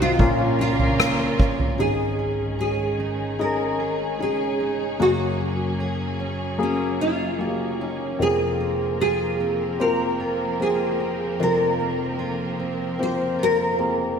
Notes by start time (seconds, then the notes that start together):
Already playing: C2 C3 D#3 C4 D#4 F#4 C5
0.00 F4 F#4
0.19 A#1 A#2 C#3 A#3 C#4 F4 A#4, kick, floor tom
0.39 C#4
0.59 A#3 F4
0.79 C#4, floor tom
1.00 A#3, cross-stick
1.19 F4
1.39 C#4, kick
1.58 F4, floor tom
1.78 G#1 G#2 D#3 G#3 C#4 D#4 G#4
2.19 C#4
2.59 G#4
3.00 D#4
3.39 C#4 D#4 G#4 A#4
3.80 G#4
4.19 C#4 D#4 G#4
4.60 D#4
4.99 F#1 F#2 F#3 A#3 F#4 G#4
5.41 A#3
5.80 G#4
6.20 C#4
6.58 F#3 A#3 G#4
6.63 C#4
7.01 F4 G#4
7.39 F#3 A#3 G4
7.46 G#4
7.81 C#4
7.85 D#4
8.19 F1 F2 F3 C4 F4 G#4 A#4
8.60 A#3
9.00 F4 G#4
9.40 C4
9.80 A#3 C4 F4 A#4 C5
10.20 F4
10.60 A#3 C4 F4 G#4 A#4
11.00 C4
11.40 F1 F2 C4 F4 A#4
11.80 A#3
12.19 F4
12.60 C4
12.99 A#3 C4 F4 C5
13.39 F4
13.43 A#4
13.79 A#3 C4 F4 G#4